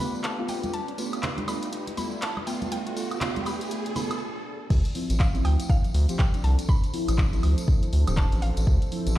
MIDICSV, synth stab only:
0, 0, Header, 1, 2, 480
1, 0, Start_track
1, 0, Tempo, 495868
1, 712, Time_signature, 4, 2, 24, 8
1, 8886, End_track
2, 0, Start_track
2, 0, Title_t, "Synth stab"
2, 0, Program_c, 0, 62
2, 0, Note_on_c, 0, 57, 77
2, 0, Note_on_c, 0, 59, 70
2, 0, Note_on_c, 0, 65, 83
2, 340, Note_off_c, 0, 57, 0
2, 341, Note_off_c, 0, 59, 0
2, 343, Note_off_c, 0, 65, 0
2, 371, Note_on_c, 0, 57, 100
2, 375, Note_on_c, 0, 59, 93
2, 379, Note_on_c, 0, 65, 109
2, 687, Note_off_c, 0, 57, 0
2, 689, Note_off_c, 0, 59, 0
2, 691, Note_off_c, 0, 65, 0
2, 948, Note_on_c, 0, 57, 78
2, 952, Note_on_c, 0, 59, 78
2, 955, Note_on_c, 0, 65, 92
2, 1175, Note_off_c, 0, 57, 0
2, 1177, Note_off_c, 0, 59, 0
2, 1179, Note_off_c, 0, 65, 0
2, 1427, Note_on_c, 0, 57, 79
2, 1431, Note_on_c, 0, 59, 73
2, 1435, Note_on_c, 0, 65, 92
2, 1655, Note_off_c, 0, 57, 0
2, 1657, Note_off_c, 0, 59, 0
2, 1658, Note_off_c, 0, 65, 0
2, 1909, Note_on_c, 0, 57, 76
2, 1912, Note_on_c, 0, 59, 71
2, 1915, Note_on_c, 0, 65, 85
2, 2135, Note_off_c, 0, 57, 0
2, 2137, Note_off_c, 0, 59, 0
2, 2139, Note_off_c, 0, 65, 0
2, 2390, Note_on_c, 0, 57, 82
2, 2393, Note_on_c, 0, 59, 77
2, 2397, Note_on_c, 0, 65, 88
2, 2616, Note_off_c, 0, 57, 0
2, 2617, Note_off_c, 0, 59, 0
2, 2619, Note_off_c, 0, 65, 0
2, 2629, Note_on_c, 0, 57, 89
2, 2632, Note_on_c, 0, 59, 84
2, 2636, Note_on_c, 0, 65, 96
2, 2855, Note_off_c, 0, 57, 0
2, 2857, Note_off_c, 0, 59, 0
2, 2859, Note_off_c, 0, 65, 0
2, 2868, Note_on_c, 0, 57, 85
2, 2871, Note_on_c, 0, 59, 74
2, 2875, Note_on_c, 0, 65, 97
2, 3095, Note_off_c, 0, 57, 0
2, 3097, Note_off_c, 0, 59, 0
2, 3099, Note_off_c, 0, 65, 0
2, 3108, Note_on_c, 0, 57, 80
2, 3112, Note_on_c, 0, 59, 76
2, 3115, Note_on_c, 0, 65, 89
2, 3335, Note_off_c, 0, 57, 0
2, 3337, Note_off_c, 0, 59, 0
2, 3339, Note_off_c, 0, 65, 0
2, 3347, Note_on_c, 0, 57, 78
2, 3351, Note_on_c, 0, 59, 74
2, 3355, Note_on_c, 0, 65, 86
2, 3575, Note_off_c, 0, 57, 0
2, 3576, Note_off_c, 0, 59, 0
2, 3578, Note_off_c, 0, 65, 0
2, 3588, Note_on_c, 0, 57, 82
2, 3591, Note_on_c, 0, 59, 77
2, 3595, Note_on_c, 0, 65, 97
2, 3815, Note_off_c, 0, 57, 0
2, 3816, Note_off_c, 0, 59, 0
2, 3818, Note_off_c, 0, 65, 0
2, 3827, Note_on_c, 0, 57, 84
2, 3831, Note_on_c, 0, 59, 76
2, 3835, Note_on_c, 0, 65, 92
2, 4055, Note_off_c, 0, 57, 0
2, 4056, Note_off_c, 0, 59, 0
2, 4058, Note_off_c, 0, 65, 0
2, 4789, Note_on_c, 0, 53, 85
2, 4792, Note_on_c, 0, 60, 79
2, 4796, Note_on_c, 0, 64, 92
2, 5140, Note_off_c, 0, 53, 0
2, 5141, Note_off_c, 0, 60, 0
2, 5143, Note_off_c, 0, 64, 0
2, 5171, Note_on_c, 0, 53, 99
2, 5175, Note_on_c, 0, 60, 93
2, 5179, Note_on_c, 0, 64, 112
2, 5487, Note_off_c, 0, 53, 0
2, 5489, Note_off_c, 0, 60, 0
2, 5491, Note_off_c, 0, 64, 0
2, 5508, Note_on_c, 0, 53, 91
2, 5512, Note_on_c, 0, 60, 84
2, 5515, Note_on_c, 0, 64, 101
2, 5706, Note_off_c, 0, 53, 0
2, 5708, Note_off_c, 0, 60, 0
2, 5710, Note_off_c, 0, 64, 0
2, 5893, Note_on_c, 0, 53, 97
2, 5896, Note_on_c, 0, 60, 89
2, 5900, Note_on_c, 0, 67, 105
2, 6100, Note_off_c, 0, 53, 0
2, 6102, Note_off_c, 0, 60, 0
2, 6104, Note_off_c, 0, 67, 0
2, 6128, Note_on_c, 0, 53, 84
2, 6136, Note_on_c, 0, 60, 78
2, 6143, Note_on_c, 0, 62, 95
2, 6686, Note_off_c, 0, 53, 0
2, 6689, Note_off_c, 0, 60, 0
2, 6693, Note_off_c, 0, 62, 0
2, 6708, Note_on_c, 0, 53, 81
2, 6712, Note_on_c, 0, 60, 78
2, 6716, Note_on_c, 0, 64, 97
2, 7060, Note_off_c, 0, 53, 0
2, 7061, Note_off_c, 0, 60, 0
2, 7063, Note_off_c, 0, 64, 0
2, 7093, Note_on_c, 0, 53, 101
2, 7097, Note_on_c, 0, 60, 92
2, 7100, Note_on_c, 0, 64, 108
2, 7408, Note_off_c, 0, 53, 0
2, 7410, Note_off_c, 0, 60, 0
2, 7412, Note_off_c, 0, 64, 0
2, 7429, Note_on_c, 0, 53, 91
2, 7433, Note_on_c, 0, 60, 82
2, 7437, Note_on_c, 0, 64, 108
2, 7627, Note_off_c, 0, 53, 0
2, 7629, Note_off_c, 0, 60, 0
2, 7630, Note_off_c, 0, 64, 0
2, 7812, Note_on_c, 0, 53, 94
2, 7815, Note_on_c, 0, 60, 92
2, 7819, Note_on_c, 0, 67, 108
2, 8020, Note_off_c, 0, 53, 0
2, 8021, Note_off_c, 0, 60, 0
2, 8023, Note_off_c, 0, 67, 0
2, 8048, Note_on_c, 0, 53, 82
2, 8056, Note_on_c, 0, 60, 75
2, 8063, Note_on_c, 0, 62, 86
2, 8606, Note_off_c, 0, 53, 0
2, 8610, Note_off_c, 0, 60, 0
2, 8613, Note_off_c, 0, 62, 0
2, 8629, Note_on_c, 0, 53, 89
2, 8632, Note_on_c, 0, 60, 77
2, 8636, Note_on_c, 0, 64, 90
2, 8886, Note_off_c, 0, 53, 0
2, 8886, Note_off_c, 0, 60, 0
2, 8886, Note_off_c, 0, 64, 0
2, 8886, End_track
0, 0, End_of_file